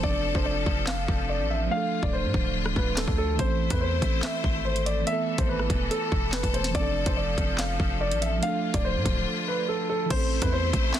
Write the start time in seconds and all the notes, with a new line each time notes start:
Already playing: A4
0.00 F1 F3 C4 D4 D5, kick
0.05 D4 A4
0.35 F1 C5, kick
0.45 D5
0.66 F1, kick
0.87 F5, snare, clap
1.08 F1, kick
1.29 D5
1.40 A1
1.50 E5
1.66 F3 A3
1.71 D3 A3 D4 F4 F5
1.77 A4
2.03 D1 D5, kick
2.13 C5
2.24 A2
2.34 D1, kick
2.66 cross-stick
2.76 D1 B4, kick
2.97 A4, snare, clap
3.08 D2, kick
3.18 A4
3.34 E3 A3
3.39 A1 A3 C4 E4 C5, kick, closed hi-hat
3.44 A4
3.70 E2 B4, kick, closed hi-hat
3.81 C5
4.02 A1, kick, closed hi-hat
4.23 E5, snare, clap, closed hi-hat
4.44 G#1, kick
4.65 C5
4.76 closed hi-hat
4.86 D5, closed hi-hat
5.02 E3 A3
5.07 E3 B3 A4 E5, closed hi-hat
5.12 A4
5.38 G#1 C5, kick, closed hi-hat
5.49 B4
5.59 cross-stick
5.70 E1, kick, closed hi-hat
5.91 A4, closed hi-hat
6.12 E1, kick
6.32 B4, snare, clap, closed hi-hat
6.43 E1, kick, closed hi-hat
6.51 E3 A3 B3 C5, closed hi-hat
6.56 A4
6.64 snare, closed hi-hat
6.70 F3 C4
6.75 F1 F3 D4 D5, kick, closed hi-hat
6.80 A4
7.06 F1 C5, kick, closed hi-hat
7.17 D5
7.38 F1, kick, closed hi-hat
7.58 F5, snare, clap, closed hi-hat
7.80 F1, kick
8.01 D5
8.11 A1, closed hi-hat
8.22 E5, closed hi-hat
8.38 F3 A3
8.43 D3 A3 D4 F4 F5, closed hi-hat
8.48 A4
8.74 D1 D5, kick, closed hi-hat
8.85 C5
8.95 A2
9.06 D1, kick, closed hi-hat
9.48 B4
9.69 A4
9.90 A4
10.05 E3 A3
10.10 A1 A3 C4 E4 C5, kick, closed hi-hat, crash
10.16 A4
10.42 E2 B4, kick, closed hi-hat
10.52 C5
10.73 A1, kick, closed hi-hat
10.94 E5, snare, clap, closed hi-hat